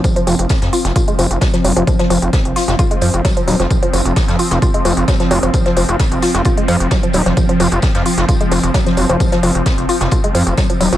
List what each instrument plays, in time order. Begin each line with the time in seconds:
Already playing: synth drone F3 C4
0.04 synth arpeggio sound F3, kick, closed hi-hat, tambourine
0.16 synth arpeggio sound F3, closed hi-hat
0.27 analog synth bass F1, synth arpeggio sound F3, open hi-hat, tambourine
0.39 analog synth bass F1, closed hi-hat
0.49 kick, snare, closed hi-hat, tambourine
0.62 analog synth bass F2, snare, closed hi-hat
0.73 synth arpeggio sound F4, open hi-hat, tambourine
0.85 analog synth bass F1, snare, closed hi-hat
0.96 synth arpeggio sound F4, kick, closed hi-hat, tambourine
1.08 synth arpeggio sound G#3, closed hi-hat
1.19 analog synth bass F1, synth arpeggio sound F3, open hi-hat, tambourine
1.30 analog synth bass F1, closed hi-hat
1.41 synth arpeggio sound F#3, kick, snare, closed hi-hat, tambourine
1.53 synth arpeggio sound F3, snare, closed hi-hat
1.64 analog synth bass F1, synth arpeggio sound F#3, open hi-hat, tambourine
1.76 analog synth bass F1, synth arpeggio sound F3, closed hi-hat
1.87 synth arpeggio sound F3, kick, closed hi-hat, tambourine
1.99 synth arpeggio sound F3, snare, closed hi-hat
2.10 analog synth bass F1, synth arpeggio sound F3, open hi-hat, tambourine
2.22 analog synth bass F1, closed hi-hat
2.33 kick, snare, closed hi-hat, tambourine
2.45 analog synth bass F1, closed hi-hat
2.56 synth arpeggio sound F4, snare, open hi-hat, tambourine
2.68 analog synth bass F1, snare, closed hi-hat
2.79 synth arpeggio sound F4, kick, closed hi-hat, tambourine
2.91 synth arpeggio sound G#3, closed hi-hat
3.01 analog synth bass F2, synth arpeggio sound F3, open hi-hat, tambourine
3.14 analog synth bass F1, closed hi-hat
3.25 synth arpeggio sound F#3, kick, snare, closed hi-hat, tambourine
3.37 synth arpeggio sound F3, closed hi-hat
3.48 analog synth bass D#1, synth arpeggio sound F#3, open hi-hat, tambourine
3.60 analog synth bass F1, synth arpeggio sound F3, snare, closed hi-hat
3.71 synth arpeggio sound F3, kick, closed hi-hat, tambourine
3.82 synth arpeggio sound F3, closed hi-hat
3.93 analog synth bass F1, synth arpeggio sound F3, open hi-hat, tambourine
4.05 analog synth bass F1, closed hi-hat
4.16 kick, snare, closed hi-hat, tambourine
4.28 analog synth bass F2, snare, closed hi-hat
4.39 synth arpeggio sound F4, open hi-hat, tambourine
4.51 analog synth bass F1, snare, closed hi-hat
4.62 synth arpeggio sound F4, kick, closed hi-hat, tambourine
4.74 synth arpeggio sound G#3, closed hi-hat
4.85 analog synth bass F1, synth arpeggio sound F3, open hi-hat, tambourine
4.97 analog synth bass F1, closed hi-hat
5.08 synth arpeggio sound F#3, kick, snare, closed hi-hat, tambourine
5.20 synth arpeggio sound F3, snare, closed hi-hat
5.31 analog synth bass F1, synth arpeggio sound F#3, open hi-hat, tambourine
5.43 analog synth bass F1, synth arpeggio sound F3, closed hi-hat
5.54 synth arpeggio sound F3, kick, closed hi-hat, tambourine
5.66 synth arpeggio sound F3, snare, closed hi-hat
5.77 analog synth bass F1, synth arpeggio sound F3, open hi-hat, tambourine
5.89 analog synth bass F1, closed hi-hat
6.00 kick, snare, closed hi-hat, tambourine
6.12 analog synth bass F1, closed hi-hat
6.22 synth arpeggio sound F4, snare, open hi-hat, tambourine
6.34 analog synth bass F1, snare, closed hi-hat
6.45 synth arpeggio sound F4, kick, closed hi-hat, tambourine
6.57 synth arpeggio sound G#3, closed hi-hat
6.68 analog synth bass F2, synth arpeggio sound F3, open hi-hat, tambourine
6.80 analog synth bass F1, closed hi-hat
6.91 synth arpeggio sound F#3, kick, snare, closed hi-hat, tambourine
7.03 synth arpeggio sound F3, closed hi-hat
7.13 analog synth bass D#1, synth arpeggio sound F#3, open hi-hat, tambourine
7.26 analog synth bass F1, synth arpeggio sound F3, snare, closed hi-hat
7.37 synth arpeggio sound F3, kick, closed hi-hat, tambourine
7.49 synth arpeggio sound F3, closed hi-hat
7.60 analog synth bass F1, synth arpeggio sound F3, open hi-hat, tambourine
7.72 analog synth bass F1, closed hi-hat
7.82 kick, snare, closed hi-hat, tambourine
7.94 analog synth bass F2, snare, closed hi-hat
8.06 synth arpeggio sound F4, open hi-hat, tambourine
8.18 analog synth bass F1, snare, closed hi-hat
8.29 synth arpeggio sound F4, kick, closed hi-hat, tambourine
8.41 synth arpeggio sound G#3, closed hi-hat
8.51 analog synth bass F1, synth arpeggio sound F3, open hi-hat, tambourine
8.63 analog synth bass F1, closed hi-hat
8.74 synth arpeggio sound F#3, kick, snare, closed hi-hat, tambourine
8.86 synth arpeggio sound F3, snare, closed hi-hat
8.97 analog synth bass F1, synth arpeggio sound F#3, open hi-hat, tambourine
9.09 analog synth bass F1, synth arpeggio sound F3, closed hi-hat
9.20 synth arpeggio sound F3, kick, closed hi-hat, tambourine
9.32 synth arpeggio sound F3, snare, closed hi-hat
9.43 analog synth bass F1, synth arpeggio sound F3, open hi-hat, tambourine
9.55 analog synth bass F1, closed hi-hat
9.66 kick, snare, closed hi-hat, tambourine
9.78 analog synth bass F1, closed hi-hat
9.89 synth arpeggio sound F4, open hi-hat, tambourine
10.00 analog synth bass F1, snare, closed hi-hat
10.11 synth arpeggio sound F4, kick, closed hi-hat, tambourine
10.24 synth arpeggio sound G#3, closed hi-hat
10.35 analog synth bass F2, synth arpeggio sound F3, open hi-hat, tambourine
10.47 analog synth bass F1, closed hi-hat
10.57 synth arpeggio sound F#3, kick, snare, closed hi-hat, tambourine
10.70 synth arpeggio sound F3, closed hi-hat
10.80 analog synth bass D#1, synth arpeggio sound F#3, open hi-hat, tambourine
10.92 analog synth bass F1, synth arpeggio sound F3, snare, closed hi-hat